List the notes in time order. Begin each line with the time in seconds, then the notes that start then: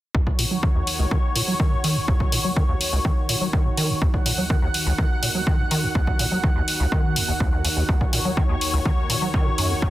0.14 D#2 D#3 F#4 C#5, kick
0.27 A#2, kick
0.39 A#2, open hi-hat
0.51 F#3
0.63 D#3, kick
0.75 D#2
0.87 open hi-hat
0.99 C#2
1.11 D#3, kick
1.36 A#2, open hi-hat
1.48 F#3
1.60 D#3, kick
1.72 D#2
1.84 D#3, open hi-hat
1.96 D#2
2.08 D#2, kick
2.20 A#2, kick
2.32 A#2, open hi-hat
2.44 F#3
2.56 D#3, kick
2.69 D#2
2.81 open hi-hat
2.93 C#2
3.05 D#3, kick
3.29 A#2, open hi-hat
3.41 F#3
3.53 D#3, kick
3.65 D#2
3.77 D#3, open hi-hat
3.89 D#2
4.01 D#2 F#5, kick
4.14 A#2, kick
4.26 A#2, open hi-hat
4.38 F#3
4.50 D#3, kick
4.62 D#2
4.74 open hi-hat
4.86 C#2
4.98 D#3, kick
5.23 A#2, open hi-hat
5.35 F#3
5.47 D#3, kick
5.59 D#2
5.71 D#3, open hi-hat
5.83 D#2
5.95 D#2, kick
6.07 A#2, kick
6.19 A#2, open hi-hat
6.32 F#3
6.44 D#3, kick
6.56 D#2
6.68 open hi-hat
6.80 C#2
6.92 D#3, kick
7.16 D#2, open hi-hat
7.28 D#2
7.40 D#2, kick
7.53 D#2
7.65 D#2, open hi-hat
7.77 D#2
7.89 D#2 C#5, kick
8.01 A#2, kick
8.13 A#2, open hi-hat
8.25 F#3
8.37 D#3, kick
8.49 D#2
8.61 open hi-hat
8.73 C#2
8.85 D#3, kick
9.10 A#2, open hi-hat
9.22 F#3
9.34 D#3, kick
9.46 D#2
9.58 F#2, open hi-hat
9.70 D#2
9.82 D#2, kick